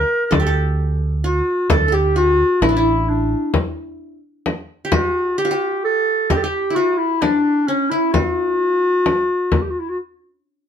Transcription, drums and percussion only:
0.32 frame drum medium
1.70 frame drum medium
2.62 frame drum medium
3.54 frame drum medium
4.46 frame drum medium
4.92 frame drum medium
6.30 frame drum medium
7.22 frame drum medium
8.14 frame drum medium
9.06 frame drum medium
9.52 frame drum medium

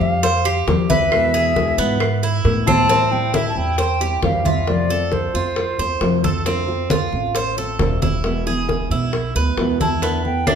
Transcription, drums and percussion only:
0.01 high conga soft
0.23 high bongo medium
0.23 high conga soft
0.46 high conga soft
0.46 claves medium
0.68 high bongo medium
0.68 low bongo medium
0.68 high conga medium
0.90 high conga medium
1.12 high bongo medium
1.12 high conga soft
1.12 claves medium
1.34 high bongo soft
1.34 high conga soft
1.56 high bongo medium
1.56 high conga medium
1.79 high conga soft
2.00 high bongo medium
2.00 high conga soft
2.00 claves medium
2.23 high bongo soft
2.23 high conga soft
2.45 high bongo medium
2.45 high conga soft
2.67 low bongo medium
2.67 high conga medium
2.67 claves medium
2.89 high bongo medium
2.89 high conga soft
3.12 high conga soft
3.34 high bongo medium
3.34 high conga medium
3.56 high conga soft
3.78 high bongo medium
3.78 high conga soft
4.01 high conga soft
4.22 high bongo medium
4.22 low bongo medium
4.22 high conga medium
4.45 high conga medium
4.67 high bongo medium
4.67 high conga soft
4.89 high bongo soft
4.89 high conga soft
5.12 high bongo medium
5.12 high conga soft
5.35 high conga soft
5.56 high bongo medium
5.56 high conga soft
5.79 high bongo soft
5.79 high conga soft
6.01 high bongo medium
6.01 low bongo medium
6.01 high conga soft
6.24 high bongo soft
6.24 high conga medium
6.46 high bongo medium
6.46 high conga soft
6.68 high conga soft
6.90 high bongo medium
6.90 high conga medium
7.13 high conga soft
7.35 high bongo medium
7.35 high conga soft
7.57 high conga soft
7.79 high bongo medium
7.79 low bongo medium
7.79 high conga medium
8.02 high conga medium
8.24 high bongo medium
8.24 high conga soft
8.46 high bongo soft
8.46 high conga soft
8.69 high bongo medium
8.69 high conga medium
8.92 high conga soft
9.13 high bongo medium
9.13 high conga soft
9.35 high bongo soft
9.35 high conga soft
9.57 high bongo medium
9.57 low bongo medium
9.57 high conga soft
9.80 high bongo soft
9.80 high conga medium
10.02 high bongo medium
10.02 high conga soft
10.25 high conga soft
10.47 high bongo medium
10.47 high conga medium
10.47 claves medium

